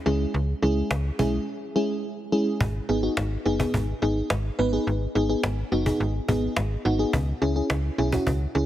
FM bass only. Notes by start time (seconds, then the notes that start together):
0.06 C#2
0.34 C#2
0.62 C#2
0.91 C#2
1.19 B1
2.61 G#1
2.89 G#1
3.17 G#1
3.46 F#1
3.74 G#1
4.02 G#1
4.30 G#1
4.59 G#1
4.87 G#1
5.15 G#1
5.44 G#1
5.72 F#1
6.00 G#1
6.28 G#1
6.57 G#1
6.85 G#1
7.13 C#2
7.42 C#2
7.70 C#2
7.98 B1
8.27 C#2
8.55 C#2